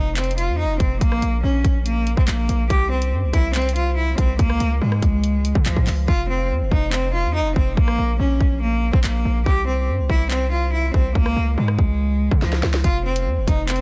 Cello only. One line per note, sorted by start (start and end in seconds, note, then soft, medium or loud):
0.00 0.15 D#4 medium
0.17 0.36 C4 medium
0.38 0.57 F4 medium
0.59 0.78 D#4 medium
0.80 0.99 C4 medium
1.01 1.41 A#3 loud
1.43 1.83 C#4 medium
1.86 2.16 A#3 medium
2.18 2.27 C4 medium
2.28 2.68 A#3 medium
2.70 2.89 G4 loud
2.91 3.10 C4 medium
3.34 3.53 E4 medium
3.55 3.74 C4 loud
3.76 3.95 F4 medium
3.97 4.16 E4 medium
4.18 4.37 C4 medium
4.39 4.79 A#3 loud
4.81 5.62 G#3 medium
5.66 5.85 F3 medium
6.08 6.27 F4 loud
6.29 6.48 C4 medium
6.72 6.91 D#4 medium
6.93 7.12 C4 medium
7.14 7.33 F4 medium
7.35 7.54 D#4 medium
7.56 7.75 C4 medium
7.77 8.17 A#3 loud
8.20 8.59 C#4 medium
8.62 8.92 A#3 medium
8.93 9.03 C4 medium
9.04 9.44 A#3 medium
9.46 9.65 G4 loud
9.67 9.86 C4 medium
10.10 10.29 E4 medium
10.31 10.50 C4 loud
10.52 10.71 F4 medium
10.73 10.92 E4 medium
10.94 11.13 C4 medium
11.15 11.55 A#3 loud
11.58 12.38 G#3 medium
12.42 12.61 F3 medium
12.84 13.03 F4 loud
13.05 13.24 C4 medium
13.48 13.67 D#4 medium
13.69 13.81 C4 medium